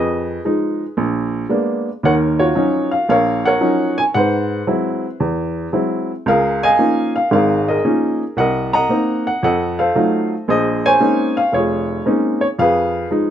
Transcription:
0.00 0.37 F2 medium
0.00 0.94 G#4 soft
0.00 0.94 B4 medium
0.00 0.41 D#5 medium
0.45 0.83 F3 soft
0.45 0.82 G#3 soft
0.45 0.83 D#4 medium
0.97 1.43 A#1 medium
1.49 1.88 G#3 medium
1.49 1.88 A#3 soft
1.49 1.88 B3 soft
1.49 1.88 D4 medium
2.03 2.49 D#2 medium
2.03 2.49 D#3 medium
2.03 3.06 A#4 medium
2.03 2.38 C#5 medium
2.03 2.13 F#5 medium
2.39 3.41 F4 medium
2.39 3.41 F#4 medium
2.39 2.89 C#5 medium
2.55 2.93 F3 soft
2.55 2.93 F#3 soft
2.55 2.94 C#4 soft
2.55 2.94 D#4 medium
2.91 3.07 F5 medium
3.09 3.55 A#1 medium
3.09 3.45 A#4 medium
3.09 3.46 C#5 medium
3.09 3.46 F5 medium
3.46 4.12 A#4 medium
3.46 4.12 C#5 medium
3.46 3.94 F#5 medium
3.61 3.99 F3 medium
3.61 3.99 F#3 soft
3.61 3.99 C#4 soft
3.61 3.99 D#4 medium
3.98 4.03 G#5 medium
4.14 4.61 G#2 medium
4.14 5.17 B4 medium
4.14 5.17 C5 medium
4.14 4.64 F#5 medium
4.67 5.05 F#3 soft
4.67 5.05 G#3 soft
4.67 5.05 C4 soft
4.67 5.05 E4 medium
5.20 5.66 E2 medium
5.73 6.11 F#3 soft
5.73 6.11 G#3 soft
5.73 6.11 C4 soft
5.73 6.11 E4 medium
6.26 6.72 C#2 medium
6.26 7.29 G#4 medium
6.26 7.29 A#4 medium
6.26 6.60 F5 medium
6.63 7.65 D#5 medium
6.63 7.14 F5 medium
6.63 7.12 G#5 loud
6.79 7.16 F3 soft
6.79 7.16 A#3 soft
6.79 7.16 C#4 soft
6.79 7.16 D#4 medium
7.16 7.32 F5 medium
7.31 7.77 G#1 medium
7.31 7.77 G#2 medium
7.31 7.69 A#4 medium
7.31 7.66 F5 medium
7.36 7.69 G#4 medium
7.68 8.34 G#4 medium
7.68 8.34 A#4 medium
7.68 8.17 D#5 medium
7.85 8.22 F3 medium
7.85 8.22 A#3 soft
7.85 8.22 C#4 soft
7.85 8.22 D#4 medium
8.37 8.83 C2 medium
8.37 9.40 A#4 medium
8.37 8.73 D#5 medium
8.37 8.73 F#5 medium
8.73 9.39 D#5 medium
8.73 9.25 F#5 medium
8.73 9.27 A#5 loud
8.89 9.27 A#3 medium
8.89 9.28 C4 soft
8.89 9.28 D#4 medium
9.27 9.43 F#5 medium
9.43 9.89 F2 medium
9.43 9.78 A4 medium
9.43 10.45 D#5 medium
9.43 9.80 F#5 medium
9.79 10.45 A4 soft
9.79 10.45 C5 medium
9.79 10.28 F5 medium
9.95 10.33 F#3 medium
9.95 10.33 A3 soft
9.95 10.33 D#4 soft
9.95 10.33 F4 medium
10.48 10.94 A#1 medium
10.48 11.50 G#4 medium
10.48 10.84 C5 medium
10.48 10.86 D#5 medium
10.86 11.86 C5 medium
10.86 11.53 C#5 medium
10.86 11.39 G#5 loud
11.00 11.38 G#3 soft
11.00 11.38 A#3 soft
11.00 11.38 C4 soft
11.00 11.38 C#4 soft
11.00 11.38 D#4 medium
11.37 11.54 F5 medium
11.52 11.99 F1 medium
11.52 12.56 F4 medium
11.52 12.56 G#4 medium
11.52 12.03 C#5 medium
12.06 12.43 G#3 soft
12.06 12.44 A#3 soft
12.06 12.44 C4 soft
12.06 12.44 C#4 soft
12.06 12.44 D#4 medium
12.41 12.46 C#5 medium
12.59 13.05 F2 medium
12.59 13.30 G#4 medium
12.59 13.30 B4 medium
12.59 13.08 F5 medium
13.11 13.30 F3 soft
13.11 13.30 G#3 soft
13.11 13.30 D#4 medium

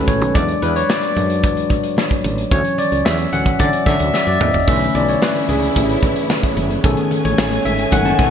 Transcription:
0.00 0.37 D#3 soft
0.00 0.34 G#3 soft
0.00 0.37 A3 soft
0.00 0.37 C#4 medium
0.00 0.37 F#4 medium
0.00 0.37 A4 medium
0.00 0.37 B4 medium
0.08 0.22 A1 medium
0.08 0.33 C#5 medium
0.08 kick medium
0.08 closed hi-hat medium
0.08 high conga medium
0.22 0.31 B1 medium
0.22 closed hi-hat soft
0.34 0.55 E2 loud
0.34 0.70 F#3 soft
0.34 0.71 G#3 soft
0.34 0.71 D4 medium
0.34 0.60 D5 loud
0.34 kick loud
0.34 closed hi-hat medium
0.48 closed hi-hat soft
0.62 0.82 E2 medium
0.62 0.75 B4 medium
0.62 closed hi-hat medium
0.62 muted conga medium
0.76 0.90 C#5 loud
0.76 closed hi-hat soft
0.89 1.66 D5 medium
0.89 snare loud
0.89 high conga medium
1.03 closed hi-hat medium
1.16 1.44 F#2 medium
1.16 1.41 F#3 medium
1.16 1.41 G#3 soft
1.16 1.41 D4 medium
1.16 closed hi-hat medium
1.16 muted conga soft
1.16 low conga medium
1.30 closed hi-hat medium
1.43 1.63 E2 loud
1.43 kick loud
1.43 closed hi-hat medium
1.43 muted conga soft
1.57 closed hi-hat medium
1.70 kick medium
1.70 closed hi-hat medium
1.70 muted conga soft
1.70 low conga medium
1.84 closed hi-hat medium
1.97 snare medium
1.97 high conga medium
2.11 kick medium
2.11 closed hi-hat soft
2.24 2.44 A1 medium
2.24 closed hi-hat medium
2.24 high conga medium
2.38 closed hi-hat soft
2.51 2.61 D2 medium
2.51 3.31 E3 soft
2.51 3.32 F#3 soft
2.51 3.32 C#4 medium
2.51 2.77 C#5 medium
2.51 kick loud
2.51 closed hi-hat medium
2.65 closed hi-hat medium
2.78 3.04 D5 medium
2.78 closed hi-hat medium
2.78 muted conga medium
2.92 3.02 C#2 medium
2.92 closed hi-hat soft
3.05 3.25 E2 medium
3.05 3.17 E5 loud
3.05 snare loud
3.05 high conga medium
3.19 closed hi-hat soft
3.32 3.52 D2 medium
3.32 3.57 E3 soft
3.32 3.57 F#3 soft
3.32 3.57 C#4 medium
3.32 3.58 F#5 loud
3.32 closed hi-hat medium
3.32 muted conga soft
3.32 low conga medium
3.46 kick medium
3.46 closed hi-hat medium
3.59 3.70 D3 loud
3.59 3.85 D5 loud
3.59 kick medium
3.59 closed hi-hat medium
3.59 muted conga soft
3.59 low conga medium
3.73 closed hi-hat medium
3.86 3.96 D3 medium
3.86 4.12 E5 loud
3.86 kick medium
3.86 snare soft
3.86 closed hi-hat medium
3.86 muted conga soft
3.86 low conga medium
3.99 4.10 D2 medium
3.99 closed hi-hat medium
4.14 4.28 E5 medium
4.14 snare medium
4.14 high conga medium
4.27 4.37 F#2 medium
4.27 4.34 D5 medium
4.40 4.50 E2 medium
4.40 4.66 D#5 medium
4.40 mid tom medium
4.40 high conga medium
4.54 4.64 F#1 medium
4.54 floor tom medium
4.67 4.87 B1 loud
4.67 5.45 D3 medium
4.67 6.82 D3 medium
4.67 5.45 E3 soft
4.67 5.45 A3 medium
4.67 8.30 A3 medium
4.67 8.30 B3 medium
4.67 6.82 C#4 medium
4.67 5.45 C#4 medium
4.67 6.82 E4 medium
4.67 4.96 E5 medium
4.67 kick loud
4.67 splash medium
4.81 closed hi-hat medium
4.95 5.14 B1 loud
4.95 5.08 D5 medium
4.95 closed hi-hat medium
4.95 muted conga medium
5.09 5.15 C#5 medium
5.09 closed hi-hat soft
5.22 5.34 B4 medium
5.22 snare loud
5.22 high conga medium
5.36 closed hi-hat soft
5.49 5.68 C#2 medium
5.49 6.26 G#4 medium
5.49 closed hi-hat medium
5.49 muted conga soft
5.49 low conga medium
5.63 closed hi-hat medium
5.75 5.96 A1 loud
5.75 kick medium
5.75 closed hi-hat medium
5.75 muted conga soft
5.89 closed hi-hat medium
6.03 kick medium
6.03 closed hi-hat medium
6.03 muted conga soft
6.03 low conga medium
6.16 closed hi-hat medium
6.30 snare loud
6.30 high conga medium
6.43 kick medium
6.43 closed hi-hat soft
6.57 6.76 F#1 medium
6.57 closed hi-hat medium
6.57 high conga medium
6.71 closed hi-hat soft
6.83 6.94 B1 medium
6.83 7.61 D#3 medium
6.83 8.30 D#3 medium
6.83 7.61 A3 soft
6.83 8.30 C#4 medium
6.83 7.61 C#4 medium
6.83 7.61 G#4 soft
6.83 7.22 A4 medium
6.83 8.30 G#5 medium
6.83 kick loud
6.83 closed hi-hat medium
6.97 closed hi-hat medium
7.11 closed hi-hat medium
7.11 muted conga medium
7.25 7.35 A1 medium
7.25 7.62 C#5 medium
7.25 closed hi-hat soft
7.38 7.58 A1 medium
7.38 snare loud
7.38 high conga medium
7.52 closed hi-hat medium
7.65 7.85 G#1 medium
7.65 7.90 E5 medium
7.65 closed hi-hat medium
7.65 muted conga soft
7.65 low conga medium
7.79 closed hi-hat medium
7.91 8.12 F#1 medium
7.91 8.16 D#3 soft
7.91 8.16 G#3 soft
7.91 8.16 A3 soft
7.91 8.17 C#4 medium
7.91 8.06 F#5 loud
7.91 kick medium
7.91 closed hi-hat medium
7.91 muted conga soft
7.91 low conga medium
8.05 8.18 A5 medium
8.05 closed hi-hat medium
8.18 8.30 B1 medium
8.18 8.26 G#5 medium
8.18 kick medium
8.18 snare soft
8.18 closed hi-hat medium
8.18 muted conga soft
8.18 low conga medium

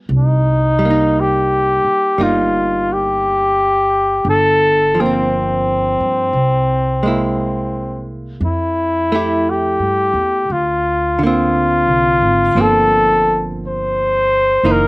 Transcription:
0.00 0.11 F4 soft
0.00 0.12 G#4 soft
0.09 1.80 C2 medium
0.17 1.22 D#4 medium
0.79 2.17 G3 soft
0.85 2.18 A#3 soft
0.90 2.20 D#4 soft
1.20 2.24 G4 medium
1.84 muted upright bass stroke soft
2.18 4.21 G1 medium
2.18 4.25 G3 soft
2.18 4.25 A#3 soft
2.18 4.26 D#4 soft
2.23 2.94 F4 medium
2.93 4.27 G4 medium
4.25 5.95 G1 medium
4.29 5.02 A4 medium
4.95 6.31 F3 soft
5.00 6.34 A#3 soft
5.00 8.10 C4 medium
5.06 6.37 C4 soft
6.00 6.30 G2 medium
6.33 8.37 C2 medium
7.03 8.40 G#3 soft
7.03 8.41 A#3 soft
7.07 8.42 E4 soft
8.41 9.75 F2 medium
8.45 9.51 E4 medium
9.12 10.49 A3 soft
9.12 10.50 E4 soft
9.12 10.51 G4 soft
9.50 10.54 G4 medium
9.79 10.12 G2 soft
10.14 10.46 E2 medium
10.50 11.84 D2 medium
10.50 11.22 F4 medium
11.19 12.56 D3 soft
11.23 12.56 A#3 soft
11.23 12.57 C4 soft
11.23 12.62 F4 medium
11.87 12.19 C2 soft
12.21 12.54 G#1 soft
12.55 14.59 G1 medium
12.55 14.64 F3 soft
12.55 14.64 A#3 soft
12.55 14.65 C4 soft
12.61 13.45 A4 medium
13.68 14.73 C5 medium
14.63 14.88 F#1 medium
14.63 14.88 E3 soft
14.63 14.88 A#3 soft
14.63 14.88 D#4 soft
14.72 14.88 A#4 medium

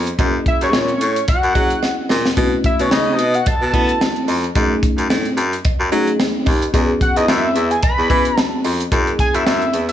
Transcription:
0.00 0.11 F2 medium
0.07 closed hi-hat soft
0.19 0.38 F#2 loud
0.19 1.06 A#3 medium
0.19 1.06 C#4 medium
0.19 1.06 E4 medium
0.19 0.26 F#4 medium
0.19 kick loud
0.19 closed hi-hat medium
0.19 cowbell medium
0.26 1.10 G#4 medium
0.46 0.61 E5 medium
0.46 kick medium
0.46 closed hi-hat medium
0.61 0.75 F#2 medium
0.61 0.74 C#5 medium
0.61 closed hi-hat soft
0.73 0.93 A#2 medium
0.73 1.25 C#5 medium
0.73 snare loud
0.73 cowbell medium
0.88 closed hi-hat soft
1.00 1.20 A2 medium
1.00 closed hi-hat medium
1.16 closed hi-hat soft
1.28 2.06 F#5 loud
1.28 kick loud
1.28 closed hi-hat medium
1.28 cowbell medium
1.43 1.52 F#2 medium
1.43 closed hi-hat soft
1.55 1.75 F#3 loud
1.55 2.21 A#3 medium
1.55 2.21 C#4 medium
1.55 2.22 E4 medium
1.55 2.22 G#4 medium
1.55 kick medium
1.55 closed hi-hat medium
1.55 cowbell medium
1.70 closed hi-hat soft
1.83 snare medium
1.83 cowbell medium
2.09 2.29 A#2 medium
2.09 snare medium
2.09 cowbell medium
2.25 snare medium
2.37 2.56 B2 loud
2.37 3.24 A3 medium
2.37 3.24 C#4 medium
2.37 3.24 E4 medium
2.37 3.24 F#4 medium
2.37 kick loud
2.37 closed hi-hat medium
2.37 cowbell medium
2.64 2.82 E5 medium
2.64 kick medium
2.64 closed hi-hat medium
2.79 2.88 B2 medium
2.79 2.92 C#5 medium
2.79 closed hi-hat medium
2.91 3.20 C#3 medium
2.91 3.37 D#5 medium
2.91 snare loud
2.91 cowbell medium
3.19 3.38 B2 loud
3.19 closed hi-hat medium
3.34 3.48 F#5 loud
3.34 closed hi-hat soft
3.46 4.28 A5 loud
3.46 kick loud
3.46 closed hi-hat medium
3.46 cowbell medium
3.61 3.70 B2 medium
3.73 4.40 A3 medium
3.73 3.93 B3 loud
3.73 4.40 C#4 medium
3.73 4.40 E4 medium
3.73 4.40 F#4 medium
3.73 kick medium
3.73 closed hi-hat medium
3.73 cowbell medium
3.89 closed hi-hat soft
4.01 snare loud
4.01 cowbell medium
4.16 closed hi-hat soft
4.28 4.47 F2 medium
4.28 open hi-hat medium
4.28 cowbell medium
4.44 closed hi-hat soft
4.55 4.75 F#2 loud
4.55 5.43 A3 medium
4.55 5.43 C#4 medium
4.55 5.43 D#4 medium
4.55 5.43 G#4 loud
4.55 kick loud
4.55 closed hi-hat medium
4.55 cowbell medium
4.83 kick medium
4.83 closed hi-hat medium
4.97 5.06 F#2 medium
4.97 closed hi-hat medium
5.09 5.29 A2 medium
5.09 snare loud
5.09 cowbell medium
5.25 closed hi-hat soft
5.37 5.56 F#2 medium
5.37 closed hi-hat medium
5.53 closed hi-hat medium
5.65 kick loud
5.65 closed hi-hat medium
5.65 cowbell medium
5.80 5.88 F#2 loud
5.92 6.11 F#3 loud
5.92 6.58 A3 medium
5.92 6.58 C#4 medium
5.92 6.58 D#4 medium
5.92 6.58 G#4 loud
5.92 closed hi-hat medium
5.92 cowbell medium
6.07 closed hi-hat soft
6.20 snare loud
6.20 cowbell medium
6.46 6.66 D#2 medium
6.46 kick medium
6.46 open hi-hat medium
6.46 cowbell medium
6.62 closed hi-hat medium
6.73 6.93 E2 loud
6.73 7.60 B3 medium
6.73 7.61 C#4 medium
6.73 7.61 F#4 medium
6.73 7.61 G#4 medium
6.73 kick loud
6.73 closed hi-hat medium
6.73 cowbell medium
7.01 7.18 F#5 medium
7.01 kick medium
7.01 closed hi-hat medium
7.16 7.25 E2 medium
7.16 7.30 D#5 medium
7.16 closed hi-hat medium
7.28 7.47 F#2 medium
7.28 7.72 E5 loud
7.28 snare loud
7.28 cowbell medium
7.55 7.75 E2 medium
7.55 closed hi-hat medium
7.71 7.82 G#5 medium
7.71 closed hi-hat medium
7.83 8.39 B5 loud
7.83 kick loud
7.83 closed hi-hat medium
7.83 cowbell medium
7.98 8.06 E2 medium
8.10 8.29 E3 loud
8.10 8.76 B3 medium
8.10 8.76 C#4 medium
8.10 8.76 F#4 medium
8.10 8.76 G#4 medium
8.10 kick medium
8.10 closed hi-hat medium
8.10 cowbell medium
8.25 closed hi-hat medium
8.37 8.61 A5 loud
8.37 snare loud
8.37 cowbell medium
8.64 8.84 F2 medium
8.64 open hi-hat medium
8.64 cowbell medium
8.80 closed hi-hat medium
8.92 9.11 F#2 loud
8.92 9.79 A#3 medium
8.92 9.79 C#4 medium
8.92 9.79 E4 medium
8.92 9.79 G#4 medium
8.92 kick medium
8.92 closed hi-hat medium
8.92 cowbell medium
9.07 closed hi-hat soft
9.19 9.36 G#5 loud
9.19 kick medium
9.19 closed hi-hat medium
9.34 9.43 F#2 medium
9.34 9.46 E5 medium
9.34 closed hi-hat soft
9.46 9.65 F#2 medium
9.46 9.86 E5 loud
9.46 snare loud
9.46 cowbell medium
9.62 closed hi-hat soft
9.73 9.92 E2 medium
9.73 closed hi-hat medium
9.89 9.92 F#5 loud
9.89 closed hi-hat medium

